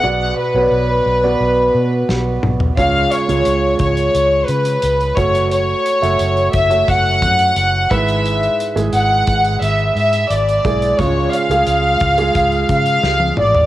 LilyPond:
<<
  \new Staff \with { instrumentName = "Violin section" } { \time 4/4 \key cis \phrygian \tempo 4 = 88 fis''8 b'2. r8 | eis''8 cis''4 cis''4 b'4 cis''8 | cis''4. e''8 fis''4. e''8~ | e''8 r8 fis''4 e''4 d''4 |
cis''8 eis''2 eis''4 d''8 | }
  \new Staff \with { instrumentName = "Upright piano" } { \time 4/4 \key cis \phrygian <b fis' d''>8 r16 <b fis' cis'' d''>8. r16 <b fis' d''>4. r8. | <gis eis' cis''>8 r16 <gis eis' cis''>4. r4 r16 <a fis' cis''>8~ | <a fis' cis''>8 r16 <a fis' e''>8. r16 <a fis' cis''>4. r16 <gis e' b'>8~ | <gis e' b'>8 r16 <gis e' gis'>4. r4 r16 <gis e' gis'>8 |
<gis eis' cis''>8 r16 <gis eis' gis'>8. r16 <gis eis' gis'>4. r8. | }
  \new Staff \with { instrumentName = "Upright piano" } { \clef bass \time 4/4 \key cis \phrygian b,4. r2 r8 | cis4. r2 r8 | r2. r8 gis,8~ | gis,4 r2. |
cis4. r2 r8 | }
  \new Staff \with { instrumentName = "Fingered electric bass" } { \clef bass \time 4/4 \key cis \phrygian b,,8 r16 b,,16 b,,8 b,,8 b,,8 b,8 b,,8 b,,8 | cis,8 r16 cis,16 cis,8 cis,8 cis,8 cis8 cis,8 fis,,8~ | fis,,8 r16 fis,,16 fis,,8 fis,,8 fis,,8 fis,8 fis,,8 gis,,8~ | gis,,8 r16 gis,,16 gis,,8 gis,,8 gis,,8 gis,8 gis,,8 b,,8 |
cis,8 r16 cis,16 cis,8 cis,8 cis,8 cis8 cis,8 a,,8 | }
  \new DrumStaff \with { instrumentName = "Drums" } \drummode { \time 4/4 r4 r4 r4 sn8 toml16 tomfh16 | <hh bd>8 hh16 hh16 hh8 <hh bd>16 hh16 hh8 hh16 hh16 hh16 hh16 <hh bd>16 hh16 | hh8 hh16 hh16 hh16 hh16 <hh bd>16 hh16 <hh bd>8 <hh bd>16 hh16 hh8 <hh bd>16 hh16 | hh16 hh16 hh16 hh16 hh8 <hh bd>16 hh16 hh16 hh16 hh16 hh16 hh16 hh16 <hh bd>16 hh16 |
<hh bd>8 hh16 hh16 hh8 <hh bd>16 hh16 <hh bd>16 hh16 <hh bd>16 hh16 sn16 tommh16 toml16 tomfh16 | }
>>